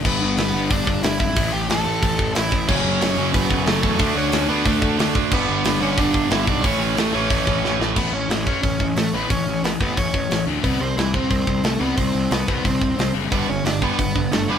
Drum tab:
CC |x-------|--------|x-------|--------|
HH |--o-o-o-|o-o-o-o-|--o-o-o-|o-o-o-o-|
SD |--o---o-|--o---o-|--o---o-|--o---o-|
BD |o---oo-o|o---oo-o|o---oo-o|o---oo-o|

CC |x-------|--------|x-------|--------|
HH |--o-o-o-|o-o-o---|--o-o-o-|o-o-o-o-|
SD |--o---o-|--o---oo|--o---o-|--o---o-|
BD |o---oo-o|o---oo--|o--ooo--|o--ooo--|

CC |--------|--------|--------|
HH |o-o-o-o-|o-o-o-o-|o-o-o-o-|
SD |--o---o-|--o---o-|--o---o-|
BD |o--ooo--|o--ooo--|o--ooo--|